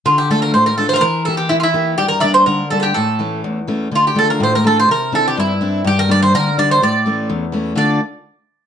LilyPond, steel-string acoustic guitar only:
\new Staff \with { instrumentName = "Steel-string acoustic guitar" } { \time 2/4 \key d \minor \tempo 4 = 124 d8 <a d' f'>8 a,8 <a d' f'>8 | e8 <bes e' g'>8 e8 <bes e' g'>8 | g,8 <g bes d'>8 d8 <g bes d'>8 | a,8 <e a cis'>8 e,8 <e a cis'>8 |
d8 <a d' f'>8 a,8 <a d' f'>8 | c8 <c' d' e'>8 g,8 <c' d' e'>8 | g,8 <g bes d'>8 d8 <g bes d'>8 | a,8 <e a cis'>8 e,8 <e a cis'>8 |
<d a d' f' a'>8 r4. | }